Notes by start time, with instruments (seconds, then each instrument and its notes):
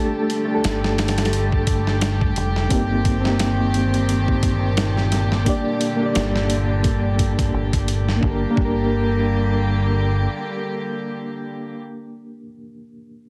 Already playing: string section D3 G3 A3 G4, reed electric piano A3 D4 G4 A4, synth texture A3 A5
0.30 closed hi-hat
0.45 reed electric piano A3 D4
0.51 reed electric piano G4 A4
0.64 fingered electric bass G1, snare, closed hi-hat
0.84 snare
0.98 snare, closed hi-hat
1.08 snare, closed hi-hat
1.18 snare, closed hi-hat
1.25 snare, closed hi-hat
1.33 closed hi-hat
1.52 kick
1.67 kick, closed hi-hat
1.87 snare
2.01 snare, closed hi-hat
2.21 kick
2.36 fingered electric bass F1, closed hi-hat
2.56 snare
2.69 fingered electric bass G1, string section A#2 D#3 C4, reed electric piano C4 D#4 G4, kick, closed hi-hat
2.73 reed electric piano A#3
3.05 kick, closed hi-hat
3.21 reed electric piano C4 D#4
3.25 reed electric piano G4, snare
3.30 reed electric piano A#3
3.39 snare, closed hi-hat
3.74 closed hi-hat
3.94 closed hi-hat
4.09 closed hi-hat
4.28 kick
4.43 kick, closed hi-hat
4.77 snare, closed hi-hat
4.97 snare
5.12 snare, closed hi-hat
5.32 snare
5.45 string section D3 G3, reed electric piano A#3 D4 G4, kick, closed hi-hat
5.49 reed electric piano D5
5.81 closed hi-hat
5.96 reed electric piano A#3 D4
6.03 reed electric piano G4 D5
6.15 fingered electric bass G1, snare, closed hi-hat
6.36 snare
6.50 closed hi-hat
6.84 kick, closed hi-hat
7.19 kick, closed hi-hat
7.39 kick, closed hi-hat
7.54 fingered electric bass G1
7.73 kick, closed hi-hat
7.88 closed hi-hat
8.09 snare
8.16 reed electric piano A#3
8.21 fingered electric bass G1, string section D3 G3 A#3 G4, reed electric piano D4, kick
8.26 reed electric piano G4
8.30 reed electric piano A#4
8.51 reed electric piano A#3
8.56 fingered electric bass G1, reed electric piano D4, kick
8.60 reed electric piano G4
8.65 reed electric piano A#4